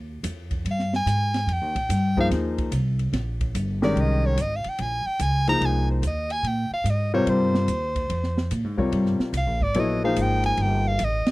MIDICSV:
0, 0, Header, 1, 6, 480
1, 0, Start_track
1, 0, Tempo, 413508
1, 1720, Time_signature, 4, 2, 24, 8
1, 13136, End_track
2, 0, Start_track
2, 0, Title_t, "Soprano saxophone"
2, 0, Program_c, 0, 64
2, 821, Note_on_c, 0, 77, 80
2, 1086, Note_off_c, 0, 77, 0
2, 1112, Note_on_c, 0, 80, 103
2, 1771, Note_on_c, 0, 79, 87
2, 1789, Note_off_c, 0, 80, 0
2, 2540, Note_off_c, 0, 79, 0
2, 2558, Note_on_c, 0, 77, 102
2, 2643, Note_off_c, 0, 77, 0
2, 4456, Note_on_c, 0, 74, 96
2, 4646, Note_on_c, 0, 75, 88
2, 4664, Note_off_c, 0, 74, 0
2, 4947, Note_on_c, 0, 73, 96
2, 4965, Note_off_c, 0, 75, 0
2, 5124, Note_on_c, 0, 75, 90
2, 5141, Note_off_c, 0, 73, 0
2, 5289, Note_on_c, 0, 77, 85
2, 5307, Note_off_c, 0, 75, 0
2, 5443, Note_on_c, 0, 79, 88
2, 5460, Note_off_c, 0, 77, 0
2, 5588, Note_on_c, 0, 80, 98
2, 5606, Note_off_c, 0, 79, 0
2, 5882, Note_on_c, 0, 79, 103
2, 5899, Note_off_c, 0, 80, 0
2, 6060, Note_on_c, 0, 80, 105
2, 6077, Note_off_c, 0, 79, 0
2, 6363, Note_off_c, 0, 80, 0
2, 6372, Note_on_c, 0, 82, 123
2, 6563, Note_on_c, 0, 80, 103
2, 6580, Note_off_c, 0, 82, 0
2, 6855, Note_off_c, 0, 80, 0
2, 6861, Note_on_c, 0, 72, 59
2, 7044, Note_on_c, 0, 75, 90
2, 7046, Note_off_c, 0, 72, 0
2, 7333, Note_on_c, 0, 80, 106
2, 7351, Note_off_c, 0, 75, 0
2, 7517, Note_on_c, 0, 79, 89
2, 7534, Note_off_c, 0, 80, 0
2, 7808, Note_off_c, 0, 79, 0
2, 7815, Note_on_c, 0, 77, 95
2, 8009, Note_on_c, 0, 75, 85
2, 8027, Note_off_c, 0, 77, 0
2, 8284, Note_off_c, 0, 75, 0
2, 8291, Note_on_c, 0, 73, 92
2, 8480, Note_on_c, 0, 72, 84
2, 8497, Note_off_c, 0, 73, 0
2, 9898, Note_off_c, 0, 72, 0
2, 10875, Note_on_c, 0, 77, 89
2, 11171, Note_on_c, 0, 74, 100
2, 11189, Note_off_c, 0, 77, 0
2, 11370, Note_on_c, 0, 75, 86
2, 11388, Note_off_c, 0, 74, 0
2, 11655, Note_off_c, 0, 75, 0
2, 11662, Note_on_c, 0, 77, 96
2, 11863, Note_on_c, 0, 79, 96
2, 11880, Note_off_c, 0, 77, 0
2, 12130, Note_off_c, 0, 79, 0
2, 12137, Note_on_c, 0, 80, 109
2, 12325, Note_on_c, 0, 79, 93
2, 12342, Note_off_c, 0, 80, 0
2, 12624, Note_on_c, 0, 77, 102
2, 12642, Note_off_c, 0, 79, 0
2, 12819, Note_on_c, 0, 75, 91
2, 12836, Note_off_c, 0, 77, 0
2, 13106, Note_off_c, 0, 75, 0
2, 13136, End_track
3, 0, Start_track
3, 0, Title_t, "Grand piano"
3, 0, Program_c, 1, 0
3, 2517, Note_on_c, 1, 53, 67
3, 2521, Note_on_c, 1, 68, 57
3, 2522, Note_on_c, 1, 58, 61
3, 2523, Note_on_c, 1, 63, 59
3, 2528, Note_on_c, 1, 72, 75
3, 3127, Note_off_c, 1, 53, 0
3, 3129, Note_off_c, 1, 58, 0
3, 3129, Note_off_c, 1, 68, 0
3, 3130, Note_off_c, 1, 63, 0
3, 3132, Note_off_c, 1, 72, 0
3, 4435, Note_on_c, 1, 51, 74
3, 4441, Note_on_c, 1, 56, 66
3, 4442, Note_on_c, 1, 61, 64
3, 4445, Note_on_c, 1, 67, 70
3, 4446, Note_on_c, 1, 70, 79
3, 5045, Note_off_c, 1, 51, 0
3, 5048, Note_off_c, 1, 56, 0
3, 5048, Note_off_c, 1, 61, 0
3, 5050, Note_off_c, 1, 67, 0
3, 5051, Note_off_c, 1, 70, 0
3, 6354, Note_on_c, 1, 53, 62
3, 6358, Note_on_c, 1, 58, 60
3, 6358, Note_on_c, 1, 63, 63
3, 6364, Note_on_c, 1, 68, 60
3, 6365, Note_on_c, 1, 72, 72
3, 6964, Note_off_c, 1, 53, 0
3, 6966, Note_off_c, 1, 58, 0
3, 6966, Note_off_c, 1, 63, 0
3, 6969, Note_off_c, 1, 68, 0
3, 6969, Note_off_c, 1, 72, 0
3, 8284, Note_on_c, 1, 48, 72
3, 8284, Note_on_c, 1, 65, 72
3, 8285, Note_on_c, 1, 55, 76
3, 8285, Note_on_c, 1, 70, 69
3, 8291, Note_on_c, 1, 72, 85
3, 8889, Note_off_c, 1, 48, 0
3, 8889, Note_off_c, 1, 65, 0
3, 8890, Note_off_c, 1, 55, 0
3, 8890, Note_off_c, 1, 70, 0
3, 8892, Note_off_c, 1, 72, 0
3, 10185, Note_on_c, 1, 55, 63
3, 10191, Note_on_c, 1, 48, 55
3, 10193, Note_on_c, 1, 65, 61
3, 10194, Note_on_c, 1, 70, 58
3, 10199, Note_on_c, 1, 73, 72
3, 10801, Note_off_c, 1, 55, 0
3, 10803, Note_off_c, 1, 48, 0
3, 10804, Note_off_c, 1, 65, 0
3, 10805, Note_off_c, 1, 70, 0
3, 10808, Note_off_c, 1, 73, 0
3, 11321, Note_on_c, 1, 59, 63
3, 11324, Note_on_c, 1, 54, 66
3, 11327, Note_on_c, 1, 69, 59
3, 11328, Note_on_c, 1, 73, 75
3, 11332, Note_on_c, 1, 64, 58
3, 11603, Note_off_c, 1, 59, 0
3, 11605, Note_off_c, 1, 54, 0
3, 11607, Note_off_c, 1, 69, 0
3, 11607, Note_off_c, 1, 73, 0
3, 11609, Note_off_c, 1, 64, 0
3, 11651, Note_on_c, 1, 53, 68
3, 11651, Note_on_c, 1, 58, 64
3, 11655, Note_on_c, 1, 68, 66
3, 11658, Note_on_c, 1, 63, 61
3, 11661, Note_on_c, 1, 72, 77
3, 12670, Note_off_c, 1, 53, 0
3, 12670, Note_off_c, 1, 58, 0
3, 12672, Note_off_c, 1, 68, 0
3, 12673, Note_off_c, 1, 63, 0
3, 12675, Note_off_c, 1, 72, 0
3, 13136, End_track
4, 0, Start_track
4, 0, Title_t, "Upright bass"
4, 0, Program_c, 2, 32
4, 0, Note_on_c, 2, 39, 74
4, 262, Note_off_c, 2, 39, 0
4, 271, Note_on_c, 2, 41, 86
4, 741, Note_off_c, 2, 41, 0
4, 752, Note_on_c, 2, 43, 77
4, 1221, Note_off_c, 2, 43, 0
4, 1230, Note_on_c, 2, 44, 82
4, 1695, Note_off_c, 2, 44, 0
4, 1702, Note_on_c, 2, 41, 76
4, 1873, Note_off_c, 2, 41, 0
4, 1873, Note_on_c, 2, 39, 55
4, 2024, Note_off_c, 2, 39, 0
4, 2031, Note_on_c, 2, 34, 63
4, 2184, Note_off_c, 2, 34, 0
4, 2196, Note_on_c, 2, 43, 89
4, 2663, Note_off_c, 2, 43, 0
4, 2675, Note_on_c, 2, 39, 81
4, 3142, Note_off_c, 2, 39, 0
4, 3151, Note_on_c, 2, 36, 84
4, 3620, Note_off_c, 2, 36, 0
4, 3630, Note_on_c, 2, 34, 78
4, 4099, Note_off_c, 2, 34, 0
4, 4116, Note_on_c, 2, 31, 86
4, 4582, Note_off_c, 2, 31, 0
4, 4591, Note_on_c, 2, 36, 86
4, 5059, Note_off_c, 2, 36, 0
4, 5080, Note_on_c, 2, 32, 81
4, 5371, Note_off_c, 2, 32, 0
4, 5558, Note_on_c, 2, 34, 76
4, 5850, Note_off_c, 2, 34, 0
4, 6031, Note_on_c, 2, 37, 90
4, 6499, Note_off_c, 2, 37, 0
4, 6507, Note_on_c, 2, 36, 85
4, 6977, Note_off_c, 2, 36, 0
4, 6990, Note_on_c, 2, 39, 83
4, 7455, Note_off_c, 2, 39, 0
4, 7462, Note_on_c, 2, 46, 77
4, 7761, Note_off_c, 2, 46, 0
4, 7941, Note_on_c, 2, 44, 87
4, 8413, Note_off_c, 2, 44, 0
4, 8430, Note_on_c, 2, 43, 83
4, 8898, Note_off_c, 2, 43, 0
4, 8908, Note_on_c, 2, 39, 81
4, 9377, Note_off_c, 2, 39, 0
4, 9397, Note_on_c, 2, 41, 80
4, 9862, Note_off_c, 2, 41, 0
4, 9878, Note_on_c, 2, 46, 87
4, 10034, Note_off_c, 2, 46, 0
4, 10034, Note_on_c, 2, 44, 56
4, 10195, Note_off_c, 2, 44, 0
4, 10201, Note_on_c, 2, 41, 64
4, 10348, Note_off_c, 2, 41, 0
4, 10353, Note_on_c, 2, 43, 82
4, 10648, Note_off_c, 2, 43, 0
4, 10827, Note_on_c, 2, 36, 82
4, 10986, Note_off_c, 2, 36, 0
4, 10986, Note_on_c, 2, 34, 53
4, 11143, Note_off_c, 2, 34, 0
4, 11150, Note_on_c, 2, 32, 62
4, 11302, Note_off_c, 2, 32, 0
4, 11316, Note_on_c, 2, 34, 82
4, 11783, Note_off_c, 2, 34, 0
4, 11802, Note_on_c, 2, 32, 94
4, 12266, Note_off_c, 2, 32, 0
4, 12273, Note_on_c, 2, 31, 81
4, 12743, Note_off_c, 2, 31, 0
4, 12762, Note_on_c, 2, 33, 90
4, 13055, Note_off_c, 2, 33, 0
4, 13136, End_track
5, 0, Start_track
5, 0, Title_t, "Muted upright bass strokes"
5, 5399, Note_on_c, 9, 29, 39
5, 5515, Note_off_c, 9, 29, 0
5, 5870, Note_on_c, 9, 29, 42
5, 5986, Note_off_c, 9, 29, 0
5, 7783, Note_on_c, 9, 29, 41
5, 7899, Note_off_c, 9, 29, 0
5, 10674, Note_on_c, 9, 29, 37
5, 10790, Note_off_c, 9, 29, 0
5, 13083, Note_on_c, 9, 29, 36
5, 13136, Note_off_c, 9, 29, 0
5, 13136, End_track
6, 0, Start_track
6, 0, Title_t, "Drums"
6, 276, Note_on_c, 9, 44, 61
6, 276, Note_on_c, 9, 51, 74
6, 392, Note_off_c, 9, 44, 0
6, 392, Note_off_c, 9, 51, 0
6, 589, Note_on_c, 9, 51, 47
6, 591, Note_on_c, 9, 36, 58
6, 705, Note_off_c, 9, 51, 0
6, 707, Note_off_c, 9, 36, 0
6, 761, Note_on_c, 9, 51, 61
6, 877, Note_off_c, 9, 51, 0
6, 918, Note_on_c, 9, 38, 27
6, 1034, Note_off_c, 9, 38, 0
6, 1083, Note_on_c, 9, 38, 42
6, 1199, Note_off_c, 9, 38, 0
6, 1242, Note_on_c, 9, 44, 66
6, 1242, Note_on_c, 9, 51, 70
6, 1358, Note_off_c, 9, 44, 0
6, 1358, Note_off_c, 9, 51, 0
6, 1557, Note_on_c, 9, 51, 46
6, 1558, Note_on_c, 9, 38, 38
6, 1673, Note_off_c, 9, 51, 0
6, 1674, Note_off_c, 9, 38, 0
6, 1723, Note_on_c, 9, 51, 57
6, 1839, Note_off_c, 9, 51, 0
6, 2035, Note_on_c, 9, 36, 43
6, 2040, Note_on_c, 9, 51, 49
6, 2151, Note_off_c, 9, 36, 0
6, 2156, Note_off_c, 9, 51, 0
6, 2203, Note_on_c, 9, 44, 60
6, 2203, Note_on_c, 9, 51, 75
6, 2319, Note_off_c, 9, 44, 0
6, 2319, Note_off_c, 9, 51, 0
6, 2515, Note_on_c, 9, 36, 65
6, 2631, Note_off_c, 9, 36, 0
6, 2685, Note_on_c, 9, 51, 59
6, 2686, Note_on_c, 9, 38, 37
6, 2801, Note_off_c, 9, 51, 0
6, 2803, Note_off_c, 9, 38, 0
6, 2996, Note_on_c, 9, 36, 57
6, 2998, Note_on_c, 9, 51, 45
6, 3112, Note_off_c, 9, 36, 0
6, 3115, Note_off_c, 9, 51, 0
6, 3155, Note_on_c, 9, 44, 55
6, 3155, Note_on_c, 9, 51, 72
6, 3271, Note_off_c, 9, 44, 0
6, 3271, Note_off_c, 9, 51, 0
6, 3472, Note_on_c, 9, 51, 45
6, 3588, Note_off_c, 9, 51, 0
6, 3638, Note_on_c, 9, 51, 61
6, 3639, Note_on_c, 9, 38, 39
6, 3754, Note_off_c, 9, 51, 0
6, 3755, Note_off_c, 9, 38, 0
6, 3953, Note_on_c, 9, 36, 59
6, 3955, Note_on_c, 9, 51, 45
6, 4069, Note_off_c, 9, 36, 0
6, 4071, Note_off_c, 9, 51, 0
6, 4119, Note_on_c, 9, 44, 62
6, 4119, Note_on_c, 9, 51, 67
6, 4235, Note_off_c, 9, 44, 0
6, 4235, Note_off_c, 9, 51, 0
6, 4438, Note_on_c, 9, 38, 52
6, 4554, Note_off_c, 9, 38, 0
6, 4606, Note_on_c, 9, 51, 58
6, 4722, Note_off_c, 9, 51, 0
6, 5078, Note_on_c, 9, 44, 60
6, 5078, Note_on_c, 9, 51, 75
6, 5194, Note_off_c, 9, 44, 0
6, 5194, Note_off_c, 9, 51, 0
6, 5388, Note_on_c, 9, 51, 49
6, 5504, Note_off_c, 9, 51, 0
6, 5554, Note_on_c, 9, 51, 65
6, 5670, Note_off_c, 9, 51, 0
6, 6030, Note_on_c, 9, 44, 58
6, 6030, Note_on_c, 9, 51, 67
6, 6146, Note_off_c, 9, 44, 0
6, 6146, Note_off_c, 9, 51, 0
6, 6355, Note_on_c, 9, 51, 50
6, 6471, Note_off_c, 9, 51, 0
6, 6518, Note_on_c, 9, 51, 58
6, 6634, Note_off_c, 9, 51, 0
6, 6998, Note_on_c, 9, 44, 61
6, 6998, Note_on_c, 9, 51, 68
6, 7114, Note_off_c, 9, 44, 0
6, 7114, Note_off_c, 9, 51, 0
6, 7313, Note_on_c, 9, 51, 48
6, 7429, Note_off_c, 9, 51, 0
6, 7479, Note_on_c, 9, 51, 62
6, 7595, Note_off_c, 9, 51, 0
6, 7957, Note_on_c, 9, 44, 54
6, 7957, Note_on_c, 9, 51, 70
6, 8073, Note_off_c, 9, 44, 0
6, 8073, Note_off_c, 9, 51, 0
6, 8438, Note_on_c, 9, 51, 66
6, 8554, Note_off_c, 9, 51, 0
6, 8757, Note_on_c, 9, 38, 52
6, 8873, Note_off_c, 9, 38, 0
6, 8914, Note_on_c, 9, 44, 63
6, 8914, Note_on_c, 9, 51, 69
6, 9030, Note_off_c, 9, 44, 0
6, 9030, Note_off_c, 9, 51, 0
6, 9233, Note_on_c, 9, 36, 46
6, 9236, Note_on_c, 9, 51, 47
6, 9349, Note_off_c, 9, 36, 0
6, 9352, Note_off_c, 9, 51, 0
6, 9399, Note_on_c, 9, 51, 65
6, 9515, Note_off_c, 9, 51, 0
6, 9557, Note_on_c, 9, 38, 29
6, 9674, Note_off_c, 9, 38, 0
6, 9721, Note_on_c, 9, 38, 49
6, 9837, Note_off_c, 9, 38, 0
6, 9876, Note_on_c, 9, 44, 55
6, 9876, Note_on_c, 9, 51, 67
6, 9992, Note_off_c, 9, 44, 0
6, 9992, Note_off_c, 9, 51, 0
6, 10190, Note_on_c, 9, 36, 56
6, 10306, Note_off_c, 9, 36, 0
6, 10359, Note_on_c, 9, 51, 58
6, 10475, Note_off_c, 9, 51, 0
6, 10515, Note_on_c, 9, 38, 27
6, 10631, Note_off_c, 9, 38, 0
6, 10676, Note_on_c, 9, 38, 44
6, 10792, Note_off_c, 9, 38, 0
6, 10836, Note_on_c, 9, 44, 50
6, 10836, Note_on_c, 9, 51, 75
6, 10952, Note_off_c, 9, 44, 0
6, 10952, Note_off_c, 9, 51, 0
6, 11149, Note_on_c, 9, 36, 57
6, 11265, Note_off_c, 9, 36, 0
6, 11311, Note_on_c, 9, 51, 69
6, 11427, Note_off_c, 9, 51, 0
6, 11798, Note_on_c, 9, 44, 69
6, 11798, Note_on_c, 9, 51, 71
6, 11914, Note_off_c, 9, 44, 0
6, 11914, Note_off_c, 9, 51, 0
6, 12113, Note_on_c, 9, 51, 52
6, 12229, Note_off_c, 9, 51, 0
6, 12273, Note_on_c, 9, 51, 61
6, 12389, Note_off_c, 9, 51, 0
6, 12755, Note_on_c, 9, 44, 60
6, 12755, Note_on_c, 9, 51, 73
6, 12871, Note_off_c, 9, 44, 0
6, 12871, Note_off_c, 9, 51, 0
6, 13076, Note_on_c, 9, 51, 46
6, 13077, Note_on_c, 9, 38, 61
6, 13136, Note_off_c, 9, 38, 0
6, 13136, Note_off_c, 9, 51, 0
6, 13136, End_track
0, 0, End_of_file